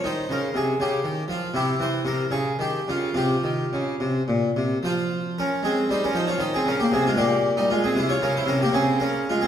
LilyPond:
<<
  \new Staff \with { instrumentName = "Harpsichord" } { \time 6/8 \key f \minor \tempo 4. = 77 << { c''8 bes'8 aes'8 g'4 f'8 | g'8 c''8 bes'8 aes'8 g'8 f'8 | g'2~ g'8 r8 | <f' c''>4 <des' bes'>8 <c' aes'>8 <ees' c''>16 <des' bes'>16 <ees' c''>16 <f' des''>16 |
<ees' c''>16 <c' aes'>16 <des' bes'>16 <bes g'>16 <c' aes'>16 <aes f'>16 <bes g'>8. <g ees'>16 <aes f'>16 <c' aes'>16 | <e' c''>16 <f' des''>16 <des' bes'>16 <e' c''>16 <des' bes'>16 <bes g'>16 <c' aes'>8 <des' bes'>8 <aes f'>16 <c' aes'>16 | } \\ { ees'4. r4. | e'4. r4. | f'4. r4. | r2. |
r2. | r2. | } >> }
  \new Staff \with { instrumentName = "Harpsichord" } { \clef bass \time 6/8 \key f \minor ees8 des8 c8 des8 ees8 f8 | c8 e8 c8 des8 ees8 des8 | c8 ees8 des8 c8 bes,8 c8 | f4. aes8 g8 f8 |
ees8 des8 c8 bes,4. | c8 des8 c8 des4. | }
>>